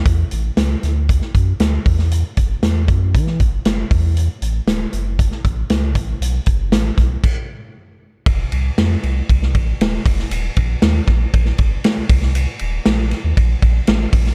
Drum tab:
CC |----------------|----------------|----------------|--------x-------|
RD |----------------|----------------|----------------|----------------|
HH |x-x-x-x-x-x-x-o-|x-x-x-x-x-x-x-o-|x-x-x-x-x-x-x-x-|x-x-x-x---------|
SD |----o-o--o--o--o|----o----o--o---|----o----o--o---|----o-o---------|
BD |o-------o-o---o-|--o---o-o-o---o-|--------o-o---o-|--o---o-o-------|

CC |----------------|----------------|----------------|
RD |x-x-x-x-x-x-x-x-|x-x-x-x-x-x-x-x-|x-x-x-x-x-x-x-x-|
HH |--------------o-|p-------------o-|p-------------o-|
SD |----o----o--o--o|----o-o--o--o--o|----o-o-----o--o|
BD |o-------o-o---o-|--o---o-o-o---o-|--------o-o---o-|